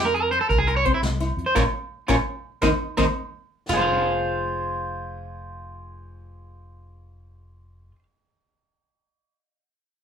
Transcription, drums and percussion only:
0, 0, Header, 1, 2, 480
1, 0, Start_track
1, 0, Key_signature, -4, "minor"
1, 0, Tempo, 355534
1, 2105, Time_signature, 12, 3, 24, 8
1, 13543, End_track
2, 0, Start_track
2, 0, Title_t, "Drums"
2, 202, Note_on_c, 9, 42, 46
2, 337, Note_off_c, 9, 42, 0
2, 439, Note_on_c, 9, 68, 61
2, 443, Note_on_c, 9, 42, 42
2, 574, Note_off_c, 9, 68, 0
2, 578, Note_off_c, 9, 42, 0
2, 675, Note_on_c, 9, 42, 53
2, 677, Note_on_c, 9, 36, 77
2, 810, Note_off_c, 9, 42, 0
2, 812, Note_off_c, 9, 36, 0
2, 919, Note_on_c, 9, 68, 61
2, 920, Note_on_c, 9, 42, 43
2, 1054, Note_off_c, 9, 68, 0
2, 1055, Note_off_c, 9, 42, 0
2, 1150, Note_on_c, 9, 68, 59
2, 1157, Note_on_c, 9, 36, 57
2, 1165, Note_on_c, 9, 42, 44
2, 1285, Note_off_c, 9, 68, 0
2, 1292, Note_off_c, 9, 36, 0
2, 1300, Note_off_c, 9, 42, 0
2, 1390, Note_on_c, 9, 38, 73
2, 1390, Note_on_c, 9, 42, 57
2, 1525, Note_off_c, 9, 38, 0
2, 1525, Note_off_c, 9, 42, 0
2, 1633, Note_on_c, 9, 68, 57
2, 1636, Note_on_c, 9, 38, 23
2, 1636, Note_on_c, 9, 42, 44
2, 1768, Note_off_c, 9, 68, 0
2, 1771, Note_off_c, 9, 38, 0
2, 1771, Note_off_c, 9, 42, 0
2, 1868, Note_on_c, 9, 42, 46
2, 2003, Note_off_c, 9, 42, 0
2, 2106, Note_on_c, 9, 38, 66
2, 2108, Note_on_c, 9, 68, 86
2, 2111, Note_on_c, 9, 36, 67
2, 2241, Note_off_c, 9, 38, 0
2, 2243, Note_off_c, 9, 68, 0
2, 2246, Note_off_c, 9, 36, 0
2, 2812, Note_on_c, 9, 68, 82
2, 2827, Note_on_c, 9, 36, 67
2, 2831, Note_on_c, 9, 38, 63
2, 2947, Note_off_c, 9, 68, 0
2, 2962, Note_off_c, 9, 36, 0
2, 2966, Note_off_c, 9, 38, 0
2, 3537, Note_on_c, 9, 68, 92
2, 3549, Note_on_c, 9, 36, 67
2, 3554, Note_on_c, 9, 38, 66
2, 3672, Note_off_c, 9, 68, 0
2, 3684, Note_off_c, 9, 36, 0
2, 3689, Note_off_c, 9, 38, 0
2, 4022, Note_on_c, 9, 38, 63
2, 4026, Note_on_c, 9, 36, 64
2, 4030, Note_on_c, 9, 68, 83
2, 4157, Note_off_c, 9, 38, 0
2, 4161, Note_off_c, 9, 36, 0
2, 4165, Note_off_c, 9, 68, 0
2, 4983, Note_on_c, 9, 38, 68
2, 4983, Note_on_c, 9, 43, 68
2, 4983, Note_on_c, 9, 53, 59
2, 4991, Note_on_c, 9, 68, 85
2, 5118, Note_off_c, 9, 38, 0
2, 5118, Note_off_c, 9, 43, 0
2, 5118, Note_off_c, 9, 53, 0
2, 5126, Note_off_c, 9, 68, 0
2, 13543, End_track
0, 0, End_of_file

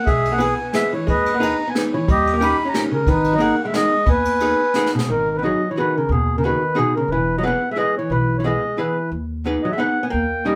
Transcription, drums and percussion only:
0, 0, Header, 1, 2, 480
1, 0, Start_track
1, 0, Key_signature, 5, "minor"
1, 0, Tempo, 334076
1, 101, Time_signature, 3, 2, 24, 8
1, 11142, Tempo, 339175
1, 15104, End_track
2, 0, Start_track
2, 0, Title_t, "Drums"
2, 99, Note_on_c, 9, 36, 67
2, 99, Note_on_c, 9, 51, 41
2, 243, Note_off_c, 9, 36, 0
2, 243, Note_off_c, 9, 51, 0
2, 361, Note_on_c, 9, 51, 43
2, 505, Note_off_c, 9, 51, 0
2, 575, Note_on_c, 9, 51, 47
2, 718, Note_off_c, 9, 51, 0
2, 1056, Note_on_c, 9, 38, 62
2, 1056, Note_on_c, 9, 51, 46
2, 1200, Note_off_c, 9, 38, 0
2, 1200, Note_off_c, 9, 51, 0
2, 1548, Note_on_c, 9, 51, 35
2, 1555, Note_on_c, 9, 36, 67
2, 1691, Note_off_c, 9, 51, 0
2, 1699, Note_off_c, 9, 36, 0
2, 1808, Note_on_c, 9, 51, 42
2, 1952, Note_off_c, 9, 51, 0
2, 2046, Note_on_c, 9, 51, 50
2, 2190, Note_off_c, 9, 51, 0
2, 2521, Note_on_c, 9, 38, 55
2, 2521, Note_on_c, 9, 51, 43
2, 2665, Note_off_c, 9, 38, 0
2, 2665, Note_off_c, 9, 51, 0
2, 2995, Note_on_c, 9, 36, 76
2, 2998, Note_on_c, 9, 51, 43
2, 3139, Note_off_c, 9, 36, 0
2, 3142, Note_off_c, 9, 51, 0
2, 3260, Note_on_c, 9, 51, 43
2, 3404, Note_off_c, 9, 51, 0
2, 3473, Note_on_c, 9, 51, 52
2, 3617, Note_off_c, 9, 51, 0
2, 3943, Note_on_c, 9, 38, 61
2, 3943, Note_on_c, 9, 51, 42
2, 4087, Note_off_c, 9, 38, 0
2, 4087, Note_off_c, 9, 51, 0
2, 4408, Note_on_c, 9, 36, 77
2, 4411, Note_on_c, 9, 51, 41
2, 4551, Note_off_c, 9, 36, 0
2, 4554, Note_off_c, 9, 51, 0
2, 4659, Note_on_c, 9, 51, 38
2, 4803, Note_off_c, 9, 51, 0
2, 4881, Note_on_c, 9, 51, 42
2, 5025, Note_off_c, 9, 51, 0
2, 5371, Note_on_c, 9, 38, 60
2, 5371, Note_on_c, 9, 51, 43
2, 5514, Note_off_c, 9, 38, 0
2, 5514, Note_off_c, 9, 51, 0
2, 5843, Note_on_c, 9, 36, 81
2, 5844, Note_on_c, 9, 51, 38
2, 5987, Note_off_c, 9, 36, 0
2, 5988, Note_off_c, 9, 51, 0
2, 6105, Note_on_c, 9, 51, 45
2, 6249, Note_off_c, 9, 51, 0
2, 6322, Note_on_c, 9, 51, 51
2, 6465, Note_off_c, 9, 51, 0
2, 6809, Note_on_c, 9, 38, 46
2, 6953, Note_off_c, 9, 38, 0
2, 6986, Note_on_c, 9, 38, 42
2, 7130, Note_off_c, 9, 38, 0
2, 7165, Note_on_c, 9, 38, 64
2, 7309, Note_off_c, 9, 38, 0
2, 15104, End_track
0, 0, End_of_file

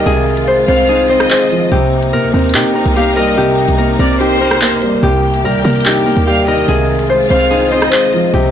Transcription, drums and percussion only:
0, 0, Header, 1, 2, 480
1, 0, Start_track
1, 0, Key_signature, -3, "minor"
1, 0, Tempo, 413793
1, 73, Time_signature, 4, 2, 24, 8
1, 9873, End_track
2, 0, Start_track
2, 0, Title_t, "Drums"
2, 73, Note_on_c, 9, 42, 73
2, 189, Note_off_c, 9, 42, 0
2, 432, Note_on_c, 9, 42, 93
2, 548, Note_off_c, 9, 42, 0
2, 795, Note_on_c, 9, 42, 72
2, 911, Note_off_c, 9, 42, 0
2, 915, Note_on_c, 9, 42, 91
2, 1031, Note_off_c, 9, 42, 0
2, 1393, Note_on_c, 9, 37, 100
2, 1395, Note_on_c, 9, 42, 80
2, 1509, Note_off_c, 9, 37, 0
2, 1511, Note_off_c, 9, 42, 0
2, 1514, Note_on_c, 9, 39, 121
2, 1515, Note_on_c, 9, 42, 74
2, 1630, Note_off_c, 9, 39, 0
2, 1631, Note_off_c, 9, 42, 0
2, 1748, Note_on_c, 9, 42, 79
2, 1864, Note_off_c, 9, 42, 0
2, 1993, Note_on_c, 9, 42, 76
2, 2109, Note_off_c, 9, 42, 0
2, 2350, Note_on_c, 9, 42, 89
2, 2466, Note_off_c, 9, 42, 0
2, 2714, Note_on_c, 9, 42, 44
2, 2773, Note_off_c, 9, 42, 0
2, 2773, Note_on_c, 9, 42, 53
2, 2832, Note_off_c, 9, 42, 0
2, 2832, Note_on_c, 9, 42, 65
2, 2892, Note_off_c, 9, 42, 0
2, 2892, Note_on_c, 9, 42, 72
2, 2953, Note_on_c, 9, 39, 125
2, 3008, Note_off_c, 9, 42, 0
2, 3069, Note_off_c, 9, 39, 0
2, 3314, Note_on_c, 9, 42, 81
2, 3430, Note_off_c, 9, 42, 0
2, 3668, Note_on_c, 9, 42, 80
2, 3784, Note_off_c, 9, 42, 0
2, 3797, Note_on_c, 9, 42, 79
2, 3913, Note_off_c, 9, 42, 0
2, 3913, Note_on_c, 9, 42, 77
2, 4029, Note_off_c, 9, 42, 0
2, 4272, Note_on_c, 9, 42, 97
2, 4388, Note_off_c, 9, 42, 0
2, 4634, Note_on_c, 9, 42, 46
2, 4714, Note_off_c, 9, 42, 0
2, 4714, Note_on_c, 9, 42, 57
2, 4793, Note_off_c, 9, 42, 0
2, 4793, Note_on_c, 9, 42, 74
2, 4909, Note_off_c, 9, 42, 0
2, 5233, Note_on_c, 9, 37, 98
2, 5235, Note_on_c, 9, 42, 80
2, 5349, Note_off_c, 9, 37, 0
2, 5351, Note_off_c, 9, 42, 0
2, 5353, Note_on_c, 9, 39, 122
2, 5355, Note_on_c, 9, 42, 71
2, 5469, Note_off_c, 9, 39, 0
2, 5471, Note_off_c, 9, 42, 0
2, 5590, Note_on_c, 9, 42, 80
2, 5706, Note_off_c, 9, 42, 0
2, 5834, Note_on_c, 9, 42, 74
2, 5950, Note_off_c, 9, 42, 0
2, 6193, Note_on_c, 9, 42, 92
2, 6309, Note_off_c, 9, 42, 0
2, 6554, Note_on_c, 9, 42, 44
2, 6614, Note_off_c, 9, 42, 0
2, 6614, Note_on_c, 9, 42, 54
2, 6673, Note_off_c, 9, 42, 0
2, 6673, Note_on_c, 9, 42, 64
2, 6733, Note_off_c, 9, 42, 0
2, 6733, Note_on_c, 9, 42, 73
2, 6793, Note_on_c, 9, 39, 123
2, 6849, Note_off_c, 9, 42, 0
2, 6909, Note_off_c, 9, 39, 0
2, 7155, Note_on_c, 9, 42, 82
2, 7271, Note_off_c, 9, 42, 0
2, 7509, Note_on_c, 9, 42, 80
2, 7625, Note_off_c, 9, 42, 0
2, 7637, Note_on_c, 9, 42, 78
2, 7752, Note_off_c, 9, 42, 0
2, 7752, Note_on_c, 9, 42, 77
2, 7868, Note_off_c, 9, 42, 0
2, 8111, Note_on_c, 9, 42, 94
2, 8227, Note_off_c, 9, 42, 0
2, 8474, Note_on_c, 9, 42, 69
2, 8590, Note_off_c, 9, 42, 0
2, 8594, Note_on_c, 9, 42, 90
2, 8710, Note_off_c, 9, 42, 0
2, 9072, Note_on_c, 9, 37, 98
2, 9074, Note_on_c, 9, 42, 80
2, 9188, Note_off_c, 9, 37, 0
2, 9190, Note_off_c, 9, 42, 0
2, 9194, Note_on_c, 9, 39, 121
2, 9195, Note_on_c, 9, 42, 71
2, 9310, Note_off_c, 9, 39, 0
2, 9311, Note_off_c, 9, 42, 0
2, 9428, Note_on_c, 9, 42, 79
2, 9544, Note_off_c, 9, 42, 0
2, 9672, Note_on_c, 9, 42, 76
2, 9788, Note_off_c, 9, 42, 0
2, 9873, End_track
0, 0, End_of_file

